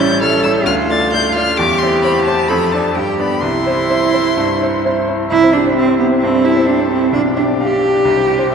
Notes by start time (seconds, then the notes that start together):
Already playing: A1 C#4
0.00 G3 E4 C#5 G6
0.22 G3 E4 A4 C#5 F6
0.44 G3 E4 C#5 E6
0.66 D2 F4 F6
0.89 A3 F4 D5 A6
1.13 A3 F4 D5 G6
1.35 A3 F4 D5 F6
1.57 E2 G4 D6
1.78 C4 E4 C6
1.83 C5
2.02 C4 E4 C5 B5
2.24 C4 E4 C5 A5
2.49 F2 A4 B5
2.72 C4 D4 D5 A5
2.94 G2 G4 G5
3.19 B3 D4 D5 B5
3.42 C2 E4 C6
3.66 C4 E4 C5
3.89 C4 E4 C5
4.14 C4 E4 C5
4.37 G2
4.61 C4 E4 C5
4.84 C4 E4 C5
5.08 C4 E4 C5
5.30 C2 E4
5.43 C4
5.53 D4 G4
5.67 C5
5.77 C4 E5
5.88 C5
5.99 B3 G4
6.11 C4
6.21 G2 C4 A4
6.34 C4
6.44 E4 G4
6.57 C5
6.67 D4 E5
6.79 C5
6.90 C4 G4
7.03 C4
7.12 B1 D4 G4
7.25 D4
7.37 D4 G4
7.48 D5
7.60 G4 F5
7.72 D5
7.82 G4
7.94 D4
8.05 C2
8.16 C4
8.28 G4
8.39 C5
8.50 E5